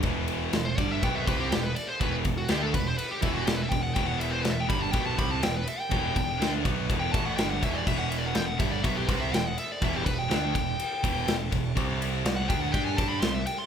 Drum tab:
CC |--------|--------|--------|--------|
RD |xxxxxxxx|xxxxxxxx|xxxxxxxx|xxxxxxxx|
SD |--o---o-|--o---o-|--o---o-|--o---o-|
BD |o--ooo--|oo-o-o-o|o--ooo--|oo-ooo-o|

CC |x-------|--------|--------|
RD |-xxxxxxx|xxxxxxxx|xxxxxxxx|
SD |--o---o-|--o---o-|--o---o-|
BD |o--ooo--|oo-o-o-o|o--ooo--|